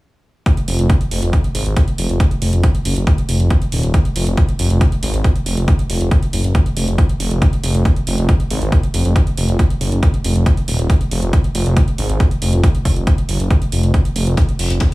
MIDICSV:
0, 0, Header, 1, 3, 480
1, 0, Start_track
1, 0, Tempo, 434783
1, 510, Time_signature, 4, 2, 24, 8
1, 16495, End_track
2, 0, Start_track
2, 0, Title_t, "Detuned saw bass"
2, 0, Program_c, 0, 39
2, 749, Note_on_c, 0, 29, 93
2, 851, Note_off_c, 0, 29, 0
2, 872, Note_on_c, 0, 29, 82
2, 969, Note_off_c, 0, 29, 0
2, 1229, Note_on_c, 0, 29, 93
2, 1331, Note_off_c, 0, 29, 0
2, 1352, Note_on_c, 0, 29, 81
2, 1449, Note_off_c, 0, 29, 0
2, 1709, Note_on_c, 0, 32, 95
2, 1811, Note_off_c, 0, 32, 0
2, 1832, Note_on_c, 0, 32, 83
2, 1929, Note_off_c, 0, 32, 0
2, 2190, Note_on_c, 0, 29, 95
2, 2291, Note_off_c, 0, 29, 0
2, 2312, Note_on_c, 0, 29, 80
2, 2409, Note_off_c, 0, 29, 0
2, 2669, Note_on_c, 0, 29, 94
2, 2771, Note_off_c, 0, 29, 0
2, 2792, Note_on_c, 0, 29, 80
2, 2889, Note_off_c, 0, 29, 0
2, 3150, Note_on_c, 0, 30, 93
2, 3251, Note_off_c, 0, 30, 0
2, 3272, Note_on_c, 0, 30, 83
2, 3369, Note_off_c, 0, 30, 0
2, 3629, Note_on_c, 0, 29, 95
2, 3731, Note_off_c, 0, 29, 0
2, 3752, Note_on_c, 0, 29, 81
2, 3849, Note_off_c, 0, 29, 0
2, 4110, Note_on_c, 0, 27, 94
2, 4211, Note_off_c, 0, 27, 0
2, 4233, Note_on_c, 0, 27, 83
2, 4329, Note_off_c, 0, 27, 0
2, 4590, Note_on_c, 0, 29, 93
2, 4691, Note_off_c, 0, 29, 0
2, 4712, Note_on_c, 0, 29, 80
2, 4809, Note_off_c, 0, 29, 0
2, 5069, Note_on_c, 0, 29, 92
2, 5171, Note_off_c, 0, 29, 0
2, 5192, Note_on_c, 0, 29, 81
2, 5289, Note_off_c, 0, 29, 0
2, 5549, Note_on_c, 0, 32, 95
2, 5651, Note_off_c, 0, 32, 0
2, 5672, Note_on_c, 0, 32, 82
2, 5769, Note_off_c, 0, 32, 0
2, 6029, Note_on_c, 0, 29, 93
2, 6131, Note_off_c, 0, 29, 0
2, 6152, Note_on_c, 0, 29, 80
2, 6249, Note_off_c, 0, 29, 0
2, 6509, Note_on_c, 0, 29, 92
2, 6611, Note_off_c, 0, 29, 0
2, 6632, Note_on_c, 0, 29, 82
2, 6729, Note_off_c, 0, 29, 0
2, 6989, Note_on_c, 0, 30, 95
2, 7091, Note_off_c, 0, 30, 0
2, 7112, Note_on_c, 0, 30, 81
2, 7209, Note_off_c, 0, 30, 0
2, 7469, Note_on_c, 0, 29, 94
2, 7571, Note_off_c, 0, 29, 0
2, 7592, Note_on_c, 0, 29, 83
2, 7689, Note_off_c, 0, 29, 0
2, 7949, Note_on_c, 0, 29, 92
2, 8051, Note_off_c, 0, 29, 0
2, 8072, Note_on_c, 0, 29, 81
2, 8169, Note_off_c, 0, 29, 0
2, 8429, Note_on_c, 0, 29, 93
2, 8531, Note_off_c, 0, 29, 0
2, 8552, Note_on_c, 0, 29, 82
2, 8649, Note_off_c, 0, 29, 0
2, 8909, Note_on_c, 0, 29, 92
2, 9011, Note_off_c, 0, 29, 0
2, 9033, Note_on_c, 0, 29, 79
2, 9129, Note_off_c, 0, 29, 0
2, 9390, Note_on_c, 0, 32, 96
2, 9491, Note_off_c, 0, 32, 0
2, 9513, Note_on_c, 0, 32, 80
2, 9609, Note_off_c, 0, 32, 0
2, 9870, Note_on_c, 0, 29, 93
2, 9971, Note_off_c, 0, 29, 0
2, 9992, Note_on_c, 0, 29, 81
2, 10089, Note_off_c, 0, 29, 0
2, 10349, Note_on_c, 0, 29, 92
2, 10451, Note_off_c, 0, 29, 0
2, 10472, Note_on_c, 0, 29, 82
2, 10569, Note_off_c, 0, 29, 0
2, 10829, Note_on_c, 0, 30, 96
2, 10931, Note_off_c, 0, 30, 0
2, 10953, Note_on_c, 0, 30, 83
2, 11049, Note_off_c, 0, 30, 0
2, 11309, Note_on_c, 0, 29, 95
2, 11411, Note_off_c, 0, 29, 0
2, 11432, Note_on_c, 0, 29, 83
2, 11529, Note_off_c, 0, 29, 0
2, 11790, Note_on_c, 0, 27, 97
2, 11891, Note_off_c, 0, 27, 0
2, 11912, Note_on_c, 0, 27, 80
2, 12009, Note_off_c, 0, 27, 0
2, 12269, Note_on_c, 0, 29, 95
2, 12371, Note_off_c, 0, 29, 0
2, 12392, Note_on_c, 0, 29, 85
2, 12489, Note_off_c, 0, 29, 0
2, 12750, Note_on_c, 0, 29, 95
2, 12851, Note_off_c, 0, 29, 0
2, 12873, Note_on_c, 0, 29, 81
2, 12969, Note_off_c, 0, 29, 0
2, 13230, Note_on_c, 0, 32, 96
2, 13331, Note_off_c, 0, 32, 0
2, 13353, Note_on_c, 0, 32, 85
2, 13449, Note_off_c, 0, 32, 0
2, 13710, Note_on_c, 0, 29, 93
2, 13811, Note_off_c, 0, 29, 0
2, 13833, Note_on_c, 0, 29, 81
2, 13929, Note_off_c, 0, 29, 0
2, 14189, Note_on_c, 0, 29, 94
2, 14291, Note_off_c, 0, 29, 0
2, 14313, Note_on_c, 0, 29, 83
2, 14409, Note_off_c, 0, 29, 0
2, 14670, Note_on_c, 0, 30, 96
2, 14771, Note_off_c, 0, 30, 0
2, 14793, Note_on_c, 0, 30, 81
2, 14889, Note_off_c, 0, 30, 0
2, 15149, Note_on_c, 0, 29, 95
2, 15251, Note_off_c, 0, 29, 0
2, 15273, Note_on_c, 0, 29, 82
2, 15369, Note_off_c, 0, 29, 0
2, 15629, Note_on_c, 0, 29, 92
2, 15731, Note_off_c, 0, 29, 0
2, 15752, Note_on_c, 0, 29, 81
2, 15849, Note_off_c, 0, 29, 0
2, 16110, Note_on_c, 0, 29, 95
2, 16211, Note_off_c, 0, 29, 0
2, 16233, Note_on_c, 0, 29, 83
2, 16329, Note_off_c, 0, 29, 0
2, 16495, End_track
3, 0, Start_track
3, 0, Title_t, "Drums"
3, 509, Note_on_c, 9, 36, 116
3, 509, Note_on_c, 9, 42, 95
3, 620, Note_off_c, 9, 36, 0
3, 620, Note_off_c, 9, 42, 0
3, 632, Note_on_c, 9, 42, 55
3, 743, Note_off_c, 9, 42, 0
3, 749, Note_on_c, 9, 46, 100
3, 860, Note_off_c, 9, 46, 0
3, 872, Note_on_c, 9, 42, 55
3, 983, Note_off_c, 9, 42, 0
3, 989, Note_on_c, 9, 36, 114
3, 990, Note_on_c, 9, 42, 92
3, 1100, Note_off_c, 9, 36, 0
3, 1100, Note_off_c, 9, 42, 0
3, 1113, Note_on_c, 9, 42, 53
3, 1223, Note_off_c, 9, 42, 0
3, 1230, Note_on_c, 9, 46, 102
3, 1340, Note_off_c, 9, 46, 0
3, 1353, Note_on_c, 9, 42, 54
3, 1463, Note_off_c, 9, 42, 0
3, 1469, Note_on_c, 9, 36, 117
3, 1470, Note_on_c, 9, 42, 91
3, 1580, Note_off_c, 9, 36, 0
3, 1580, Note_off_c, 9, 42, 0
3, 1593, Note_on_c, 9, 42, 52
3, 1703, Note_off_c, 9, 42, 0
3, 1709, Note_on_c, 9, 46, 103
3, 1820, Note_off_c, 9, 46, 0
3, 1832, Note_on_c, 9, 42, 52
3, 1943, Note_off_c, 9, 42, 0
3, 1949, Note_on_c, 9, 36, 112
3, 1949, Note_on_c, 9, 42, 92
3, 2059, Note_off_c, 9, 42, 0
3, 2060, Note_off_c, 9, 36, 0
3, 2072, Note_on_c, 9, 42, 54
3, 2183, Note_off_c, 9, 42, 0
3, 2189, Note_on_c, 9, 46, 102
3, 2300, Note_off_c, 9, 46, 0
3, 2312, Note_on_c, 9, 42, 52
3, 2422, Note_off_c, 9, 42, 0
3, 2429, Note_on_c, 9, 36, 121
3, 2429, Note_on_c, 9, 42, 94
3, 2539, Note_off_c, 9, 42, 0
3, 2540, Note_off_c, 9, 36, 0
3, 2552, Note_on_c, 9, 42, 54
3, 2662, Note_off_c, 9, 42, 0
3, 2669, Note_on_c, 9, 46, 105
3, 2779, Note_off_c, 9, 46, 0
3, 2792, Note_on_c, 9, 42, 53
3, 2902, Note_off_c, 9, 42, 0
3, 2909, Note_on_c, 9, 36, 117
3, 2909, Note_on_c, 9, 42, 94
3, 3019, Note_off_c, 9, 42, 0
3, 3020, Note_off_c, 9, 36, 0
3, 3032, Note_on_c, 9, 42, 54
3, 3142, Note_off_c, 9, 42, 0
3, 3149, Note_on_c, 9, 46, 108
3, 3259, Note_off_c, 9, 46, 0
3, 3272, Note_on_c, 9, 42, 55
3, 3383, Note_off_c, 9, 42, 0
3, 3389, Note_on_c, 9, 36, 121
3, 3389, Note_on_c, 9, 42, 89
3, 3499, Note_off_c, 9, 42, 0
3, 3500, Note_off_c, 9, 36, 0
3, 3512, Note_on_c, 9, 42, 55
3, 3622, Note_off_c, 9, 42, 0
3, 3629, Note_on_c, 9, 46, 105
3, 3739, Note_off_c, 9, 46, 0
3, 3752, Note_on_c, 9, 42, 52
3, 3863, Note_off_c, 9, 42, 0
3, 3869, Note_on_c, 9, 36, 115
3, 3869, Note_on_c, 9, 42, 90
3, 3979, Note_off_c, 9, 42, 0
3, 3980, Note_off_c, 9, 36, 0
3, 3992, Note_on_c, 9, 42, 53
3, 4103, Note_off_c, 9, 42, 0
3, 4109, Note_on_c, 9, 46, 106
3, 4219, Note_off_c, 9, 46, 0
3, 4232, Note_on_c, 9, 42, 54
3, 4343, Note_off_c, 9, 42, 0
3, 4349, Note_on_c, 9, 42, 92
3, 4350, Note_on_c, 9, 36, 123
3, 4459, Note_off_c, 9, 42, 0
3, 4460, Note_off_c, 9, 36, 0
3, 4472, Note_on_c, 9, 42, 55
3, 4583, Note_off_c, 9, 42, 0
3, 4589, Note_on_c, 9, 46, 109
3, 4700, Note_off_c, 9, 46, 0
3, 4712, Note_on_c, 9, 42, 53
3, 4823, Note_off_c, 9, 42, 0
3, 4829, Note_on_c, 9, 42, 91
3, 4830, Note_on_c, 9, 36, 116
3, 4940, Note_off_c, 9, 36, 0
3, 4940, Note_off_c, 9, 42, 0
3, 4952, Note_on_c, 9, 42, 52
3, 5062, Note_off_c, 9, 42, 0
3, 5069, Note_on_c, 9, 46, 109
3, 5180, Note_off_c, 9, 46, 0
3, 5192, Note_on_c, 9, 42, 55
3, 5303, Note_off_c, 9, 42, 0
3, 5309, Note_on_c, 9, 42, 90
3, 5310, Note_on_c, 9, 36, 123
3, 5420, Note_off_c, 9, 36, 0
3, 5420, Note_off_c, 9, 42, 0
3, 5433, Note_on_c, 9, 42, 54
3, 5543, Note_off_c, 9, 42, 0
3, 5550, Note_on_c, 9, 46, 109
3, 5660, Note_off_c, 9, 46, 0
3, 5673, Note_on_c, 9, 42, 52
3, 5783, Note_off_c, 9, 42, 0
3, 5789, Note_on_c, 9, 36, 118
3, 5789, Note_on_c, 9, 42, 91
3, 5900, Note_off_c, 9, 36, 0
3, 5900, Note_off_c, 9, 42, 0
3, 5912, Note_on_c, 9, 42, 55
3, 6023, Note_off_c, 9, 42, 0
3, 6029, Note_on_c, 9, 46, 107
3, 6140, Note_off_c, 9, 46, 0
3, 6152, Note_on_c, 9, 42, 51
3, 6263, Note_off_c, 9, 42, 0
3, 6269, Note_on_c, 9, 36, 121
3, 6269, Note_on_c, 9, 42, 91
3, 6380, Note_off_c, 9, 36, 0
3, 6380, Note_off_c, 9, 42, 0
3, 6393, Note_on_c, 9, 42, 53
3, 6503, Note_off_c, 9, 42, 0
3, 6510, Note_on_c, 9, 46, 104
3, 6620, Note_off_c, 9, 46, 0
3, 6633, Note_on_c, 9, 42, 49
3, 6743, Note_off_c, 9, 42, 0
3, 6749, Note_on_c, 9, 36, 120
3, 6750, Note_on_c, 9, 42, 87
3, 6860, Note_off_c, 9, 36, 0
3, 6860, Note_off_c, 9, 42, 0
3, 6873, Note_on_c, 9, 42, 51
3, 6983, Note_off_c, 9, 42, 0
3, 6990, Note_on_c, 9, 46, 108
3, 7100, Note_off_c, 9, 46, 0
3, 7113, Note_on_c, 9, 42, 52
3, 7224, Note_off_c, 9, 42, 0
3, 7229, Note_on_c, 9, 36, 119
3, 7230, Note_on_c, 9, 42, 87
3, 7340, Note_off_c, 9, 36, 0
3, 7340, Note_off_c, 9, 42, 0
3, 7353, Note_on_c, 9, 42, 51
3, 7463, Note_off_c, 9, 42, 0
3, 7470, Note_on_c, 9, 46, 108
3, 7580, Note_off_c, 9, 46, 0
3, 7593, Note_on_c, 9, 42, 50
3, 7703, Note_off_c, 9, 42, 0
3, 7709, Note_on_c, 9, 36, 117
3, 7709, Note_on_c, 9, 42, 85
3, 7820, Note_off_c, 9, 36, 0
3, 7820, Note_off_c, 9, 42, 0
3, 7832, Note_on_c, 9, 42, 51
3, 7942, Note_off_c, 9, 42, 0
3, 7949, Note_on_c, 9, 46, 107
3, 8060, Note_off_c, 9, 46, 0
3, 8072, Note_on_c, 9, 42, 49
3, 8183, Note_off_c, 9, 42, 0
3, 8189, Note_on_c, 9, 36, 119
3, 8190, Note_on_c, 9, 42, 88
3, 8300, Note_off_c, 9, 36, 0
3, 8300, Note_off_c, 9, 42, 0
3, 8313, Note_on_c, 9, 42, 50
3, 8423, Note_off_c, 9, 42, 0
3, 8429, Note_on_c, 9, 46, 104
3, 8540, Note_off_c, 9, 46, 0
3, 8552, Note_on_c, 9, 42, 50
3, 8663, Note_off_c, 9, 42, 0
3, 8669, Note_on_c, 9, 36, 112
3, 8669, Note_on_c, 9, 42, 85
3, 8780, Note_off_c, 9, 36, 0
3, 8780, Note_off_c, 9, 42, 0
3, 8792, Note_on_c, 9, 42, 50
3, 8903, Note_off_c, 9, 42, 0
3, 8909, Note_on_c, 9, 46, 106
3, 9020, Note_off_c, 9, 46, 0
3, 9032, Note_on_c, 9, 42, 52
3, 9143, Note_off_c, 9, 42, 0
3, 9149, Note_on_c, 9, 36, 114
3, 9150, Note_on_c, 9, 42, 86
3, 9260, Note_off_c, 9, 36, 0
3, 9260, Note_off_c, 9, 42, 0
3, 9272, Note_on_c, 9, 42, 50
3, 9383, Note_off_c, 9, 42, 0
3, 9390, Note_on_c, 9, 46, 104
3, 9500, Note_off_c, 9, 46, 0
3, 9513, Note_on_c, 9, 42, 48
3, 9623, Note_off_c, 9, 42, 0
3, 9629, Note_on_c, 9, 36, 114
3, 9630, Note_on_c, 9, 42, 85
3, 9740, Note_off_c, 9, 36, 0
3, 9740, Note_off_c, 9, 42, 0
3, 9753, Note_on_c, 9, 42, 51
3, 9863, Note_off_c, 9, 42, 0
3, 9870, Note_on_c, 9, 46, 106
3, 9980, Note_off_c, 9, 46, 0
3, 9993, Note_on_c, 9, 42, 50
3, 10103, Note_off_c, 9, 42, 0
3, 10109, Note_on_c, 9, 36, 113
3, 10110, Note_on_c, 9, 42, 88
3, 10220, Note_off_c, 9, 36, 0
3, 10220, Note_off_c, 9, 42, 0
3, 10233, Note_on_c, 9, 42, 52
3, 10343, Note_off_c, 9, 42, 0
3, 10350, Note_on_c, 9, 46, 100
3, 10460, Note_off_c, 9, 46, 0
3, 10473, Note_on_c, 9, 42, 48
3, 10583, Note_off_c, 9, 42, 0
3, 10590, Note_on_c, 9, 36, 112
3, 10590, Note_on_c, 9, 42, 85
3, 10700, Note_off_c, 9, 36, 0
3, 10700, Note_off_c, 9, 42, 0
3, 10713, Note_on_c, 9, 42, 50
3, 10823, Note_off_c, 9, 42, 0
3, 10830, Note_on_c, 9, 46, 102
3, 10940, Note_off_c, 9, 46, 0
3, 10953, Note_on_c, 9, 42, 50
3, 11063, Note_off_c, 9, 42, 0
3, 11070, Note_on_c, 9, 36, 111
3, 11070, Note_on_c, 9, 42, 83
3, 11180, Note_off_c, 9, 36, 0
3, 11180, Note_off_c, 9, 42, 0
3, 11193, Note_on_c, 9, 42, 49
3, 11303, Note_off_c, 9, 42, 0
3, 11310, Note_on_c, 9, 46, 100
3, 11420, Note_off_c, 9, 46, 0
3, 11433, Note_on_c, 9, 42, 49
3, 11543, Note_off_c, 9, 42, 0
3, 11550, Note_on_c, 9, 36, 110
3, 11550, Note_on_c, 9, 42, 85
3, 11660, Note_off_c, 9, 36, 0
3, 11660, Note_off_c, 9, 42, 0
3, 11673, Note_on_c, 9, 42, 51
3, 11783, Note_off_c, 9, 42, 0
3, 11790, Note_on_c, 9, 46, 99
3, 11900, Note_off_c, 9, 46, 0
3, 11913, Note_on_c, 9, 42, 51
3, 12023, Note_off_c, 9, 42, 0
3, 12030, Note_on_c, 9, 36, 111
3, 12030, Note_on_c, 9, 42, 89
3, 12140, Note_off_c, 9, 36, 0
3, 12140, Note_off_c, 9, 42, 0
3, 12153, Note_on_c, 9, 42, 52
3, 12263, Note_off_c, 9, 42, 0
3, 12270, Note_on_c, 9, 46, 99
3, 12380, Note_off_c, 9, 46, 0
3, 12392, Note_on_c, 9, 42, 50
3, 12503, Note_off_c, 9, 42, 0
3, 12510, Note_on_c, 9, 36, 111
3, 12510, Note_on_c, 9, 42, 88
3, 12620, Note_off_c, 9, 36, 0
3, 12620, Note_off_c, 9, 42, 0
3, 12633, Note_on_c, 9, 42, 51
3, 12743, Note_off_c, 9, 42, 0
3, 12749, Note_on_c, 9, 46, 98
3, 12860, Note_off_c, 9, 46, 0
3, 12872, Note_on_c, 9, 42, 51
3, 12983, Note_off_c, 9, 42, 0
3, 12989, Note_on_c, 9, 42, 86
3, 12990, Note_on_c, 9, 36, 113
3, 13100, Note_off_c, 9, 36, 0
3, 13100, Note_off_c, 9, 42, 0
3, 13113, Note_on_c, 9, 42, 50
3, 13223, Note_off_c, 9, 42, 0
3, 13229, Note_on_c, 9, 46, 96
3, 13340, Note_off_c, 9, 46, 0
3, 13353, Note_on_c, 9, 42, 50
3, 13463, Note_off_c, 9, 42, 0
3, 13469, Note_on_c, 9, 42, 88
3, 13470, Note_on_c, 9, 36, 108
3, 13580, Note_off_c, 9, 36, 0
3, 13580, Note_off_c, 9, 42, 0
3, 13593, Note_on_c, 9, 42, 52
3, 13703, Note_off_c, 9, 42, 0
3, 13710, Note_on_c, 9, 46, 100
3, 13820, Note_off_c, 9, 46, 0
3, 13833, Note_on_c, 9, 42, 51
3, 13943, Note_off_c, 9, 42, 0
3, 13949, Note_on_c, 9, 42, 93
3, 13950, Note_on_c, 9, 36, 113
3, 14060, Note_off_c, 9, 36, 0
3, 14060, Note_off_c, 9, 42, 0
3, 14072, Note_on_c, 9, 42, 54
3, 14183, Note_off_c, 9, 42, 0
3, 14189, Note_on_c, 9, 36, 56
3, 14190, Note_on_c, 9, 46, 103
3, 14300, Note_off_c, 9, 36, 0
3, 14300, Note_off_c, 9, 46, 0
3, 14313, Note_on_c, 9, 42, 53
3, 14423, Note_off_c, 9, 42, 0
3, 14430, Note_on_c, 9, 36, 110
3, 14430, Note_on_c, 9, 42, 92
3, 14540, Note_off_c, 9, 36, 0
3, 14540, Note_off_c, 9, 42, 0
3, 14553, Note_on_c, 9, 42, 53
3, 14663, Note_off_c, 9, 42, 0
3, 14670, Note_on_c, 9, 46, 101
3, 14780, Note_off_c, 9, 46, 0
3, 14793, Note_on_c, 9, 42, 54
3, 14903, Note_off_c, 9, 42, 0
3, 14910, Note_on_c, 9, 36, 112
3, 14910, Note_on_c, 9, 42, 90
3, 15020, Note_off_c, 9, 36, 0
3, 15020, Note_off_c, 9, 42, 0
3, 15033, Note_on_c, 9, 42, 53
3, 15143, Note_off_c, 9, 42, 0
3, 15150, Note_on_c, 9, 46, 96
3, 15260, Note_off_c, 9, 46, 0
3, 15273, Note_on_c, 9, 42, 51
3, 15383, Note_off_c, 9, 42, 0
3, 15390, Note_on_c, 9, 36, 111
3, 15390, Note_on_c, 9, 42, 90
3, 15500, Note_off_c, 9, 36, 0
3, 15500, Note_off_c, 9, 42, 0
3, 15513, Note_on_c, 9, 42, 54
3, 15624, Note_off_c, 9, 42, 0
3, 15630, Note_on_c, 9, 46, 98
3, 15741, Note_off_c, 9, 46, 0
3, 15753, Note_on_c, 9, 42, 52
3, 15864, Note_off_c, 9, 42, 0
3, 15867, Note_on_c, 9, 42, 87
3, 15869, Note_on_c, 9, 36, 120
3, 15870, Note_off_c, 9, 42, 0
3, 15870, Note_on_c, 9, 42, 97
3, 15980, Note_off_c, 9, 36, 0
3, 15980, Note_off_c, 9, 42, 0
3, 15993, Note_on_c, 9, 42, 55
3, 16103, Note_off_c, 9, 42, 0
3, 16110, Note_on_c, 9, 46, 102
3, 16111, Note_off_c, 9, 46, 0
3, 16111, Note_on_c, 9, 46, 82
3, 16221, Note_off_c, 9, 46, 0
3, 16233, Note_on_c, 9, 42, 53
3, 16242, Note_off_c, 9, 42, 0
3, 16242, Note_on_c, 9, 42, 47
3, 16342, Note_off_c, 9, 42, 0
3, 16342, Note_on_c, 9, 42, 95
3, 16347, Note_on_c, 9, 38, 111
3, 16350, Note_off_c, 9, 42, 0
3, 16350, Note_on_c, 9, 36, 118
3, 16350, Note_on_c, 9, 42, 93
3, 16457, Note_off_c, 9, 38, 0
3, 16460, Note_off_c, 9, 36, 0
3, 16460, Note_off_c, 9, 42, 0
3, 16495, End_track
0, 0, End_of_file